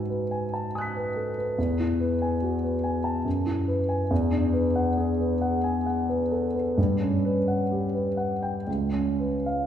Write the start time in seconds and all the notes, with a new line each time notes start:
Already playing: G#2 D#4 F#4 B4 G#5
0.09 B4
0.31 G#5
0.54 A5
0.75 G#5 D#6 F#6
0.81 B6
0.96 B4
1.16 A4
1.38 B4
1.58 E2
1.80 E4
2.00 B4
2.22 G#5
2.42 F#4
2.64 B4
2.84 G#5
3.04 A5
3.25 F#2
3.46 E4
3.68 B4
3.89 G#5
4.11 E2
4.32 D4
4.53 B4
4.76 F#5
4.98 G#4
5.20 B4
5.42 F#5
5.64 G#5
5.86 F#5
6.09 B4
6.32 A4
6.55 B4
6.78 G2
7.01 C#4
7.25 B4
7.48 F#5
7.71 G4
7.94 B4
8.17 F#5
8.42 G5
8.67 C#2
8.93 C#4
9.20 B4
9.46 F5